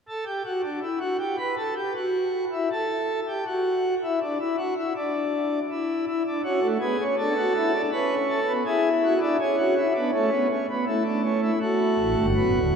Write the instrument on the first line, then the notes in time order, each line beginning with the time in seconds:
pipe organ
0.08 A4
0.26 G4
0.45 F#4
0.62 D4
0.82 E4
1.00 F#4
1.19 G4
1.38 B4
1.57 A4
1.76 G4
1.96 F#4
2.52 E4
2.72 A4
3.28 G4
3.46 F#4
4.04 E4
4.22 D4
4.40 E4
4.58 F#4
4.77 E4
4.96 D4
5.70 E4
6.07 E4
6.27 D4
6.44 C#4 F#4
6.62 A3
6.81 B3 G#4
7.00 C#4
7.18 D4 A4
7.38 F#4
7.56 E4
7.75 D4
7.92 C#4 B4
8.30 A4
8.48 B3
8.66 E4 G#4
9.04 F#4
9.21 D4 E4
9.40 C#4 G#4
9.58 F#4
9.77 E4
9.95 B3 D4
10.13 A3 C#4
10.30 B3
10.50 C#4
10.69 B3
10.87 A3 E4
11.05 D4
11.24 C#4
11.42 E4
11.61 A3 F#4
11.99 A1 A2
12.17 G1 G2
12.36 F#1 F#2 B3
12.55 D1 D2